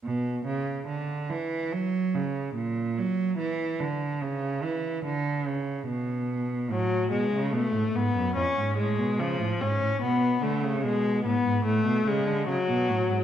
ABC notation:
X:1
M:4/4
L:1/16
Q:1/4=72
K:Bm
V:1 name="Viola"
z16 | z16 | F,2 ^G,2 A,2 B,2 C2 G,2 ^E,2 C2 | B,2 A,2 ^G,2 B,2 A,2 G,2 F,4 |]
V:2 name="Cello" clef=bass
B,,2 C,2 D,2 E,2 F,2 C,2 ^A,,2 F,2 | E,2 D,2 C,2 E,2 D,2 C,2 B,,4 | A,,2 B,, C, B,, A,, ^G,, F,, ^E,, G,, A,, B,, C, A,, G,, A,, | B,,2 D, C, B,,2 A,, ^G,, A,, B,, C, D, C, B,, A,, G,, |]